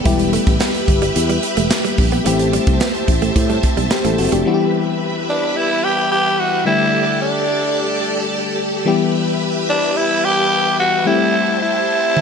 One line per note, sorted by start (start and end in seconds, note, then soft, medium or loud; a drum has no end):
0.00 4.42 G4 medium
0.04 0.36 E1 loud
0.04 2.21 G3 medium
0.04 2.22 B3 medium
0.04 0.16 E4 medium
0.04 2.22 E4 medium
0.04 2.22 G4 medium
0.04 2.24 B4 medium
0.04 2.24 E5 medium
0.04 2.24 B5 medium
0.04 kick loud
0.04 closed hi-hat medium
0.19 muted clean electric guitar stroke soft
0.19 closed hi-hat medium
0.33 0.43 A3 medium
0.33 closed hi-hat medium
0.47 0.57 A1 medium
0.47 kick loud
0.47 closed hi-hat soft
0.61 0.71 B3 medium
0.61 snare loud
0.61 clap medium
0.74 closed hi-hat soft
0.88 1.09 G1 medium
0.88 muted clean electric guitar stroke soft
0.88 kick medium
0.88 closed hi-hat medium
1.02 1.12 G3 medium
1.02 closed hi-hat medium
1.16 1.36 E2 loud
1.16 closed hi-hat medium
1.29 1.40 G3 medium
1.29 closed hi-hat soft
1.43 muted clean electric guitar stroke soft
1.43 closed hi-hat medium
1.57 1.67 E1 medium
1.57 1.67 A3 medium
1.57 closed hi-hat medium
1.71 snare loud
1.71 clap medium
1.84 1.95 G3 medium
1.84 closed hi-hat medium
1.98 2.19 A#1 medium
1.98 muted clean electric guitar stroke soft
1.98 kick medium
1.98 open hi-hat medium
2.12 2.22 B3 medium
2.12 closed hi-hat soft
2.25 2.57 A1 loud
2.25 4.41 A3 medium
2.25 2.36 A3 medium
2.25 3.87 C4 medium
2.25 3.88 E4 medium
2.25 3.88 G4 medium
2.25 4.44 C5 medium
2.25 4.44 E5 medium
2.25 4.44 A5 medium
2.25 closed hi-hat medium
2.39 muted clean electric guitar stroke soft
2.39 closed hi-hat medium
2.53 2.64 G3 medium
2.53 closed hi-hat medium
2.67 2.77 C2 medium
2.67 kick loud
2.67 closed hi-hat soft
2.81 2.91 B3 medium
2.81 snare loud
2.81 clap medium
2.95 closed hi-hat soft
3.08 3.29 A1 medium
3.08 muted clean electric guitar stroke soft
3.08 kick medium
3.08 closed hi-hat medium
3.22 3.32 A3 medium
3.22 closed hi-hat soft
3.36 3.57 A2 medium
3.36 kick medium
3.36 closed hi-hat medium
3.50 3.60 G3 medium
3.50 closed hi-hat soft
3.63 muted clean electric guitar stroke soft
3.63 kick medium
3.63 closed hi-hat medium
3.77 3.87 B1 medium
3.77 3.87 G3 medium
3.77 closed hi-hat medium
3.91 4.04 G4 medium
3.91 4.04 C5 medium
3.91 snare loud
3.91 clap medium
4.04 4.15 A1 medium
4.04 4.15 A3 medium
4.04 4.18 E4 medium
4.04 4.18 A4 medium
4.04 closed hi-hat soft
4.18 4.29 F#1 medium
4.18 4.32 C4 medium
4.18 4.32 F#4 medium
4.18 muted clean electric guitar stroke soft
4.18 open hi-hat medium
4.32 4.43 F1 medium
4.32 4.42 A3 medium
4.32 4.59 D4 medium
4.32 4.53 G4 medium
4.32 closed hi-hat soft
4.45 6.62 E3 medium
4.45 6.62 G3 medium
4.45 6.62 B3 medium
4.45 6.63 E4 medium
4.45 4.53 F#4 medium
4.45 12.21 G4 medium
4.45 6.64 B4 medium
4.45 6.64 E5 medium
4.45 6.64 B5 loud
4.54 6.66 G4 medium
5.29 5.58 D4 medium
5.57 5.86 E4 loud
5.84 6.11 G4 loud
6.12 6.41 G4 loud
6.40 6.66 F#4 loud
6.65 8.82 D3 medium
6.65 8.82 G3 medium
6.65 8.82 A3 medium
6.65 8.83 D4 medium
6.65 7.18 E4 loud
6.65 8.83 G4 medium
6.65 8.84 A4 medium
6.65 8.84 D5 medium
6.65 8.84 A5 medium
7.22 8.55 D4 medium
8.85 11.02 E3 medium
8.85 11.02 G3 medium
8.85 11.03 B3 medium
8.85 11.03 E4 medium
8.85 11.03 G4 medium
8.85 11.04 B4 medium
8.85 11.04 E5 medium
8.85 11.04 B5 medium
9.70 9.99 D4 loud
9.97 10.26 E4 loud
10.24 10.79 G4 loud
10.80 11.08 F#4 loud
11.05 12.21 G3 medium
11.05 12.21 A3 medium
11.05 12.21 C4 medium
11.05 11.61 E4 loud
11.05 12.21 E4 medium
11.05 12.21 G4 medium
11.05 12.21 C5 medium
11.05 12.21 E5 medium
11.05 12.21 A5 medium
11.62 12.21 E4 loud
12.17 high tom medium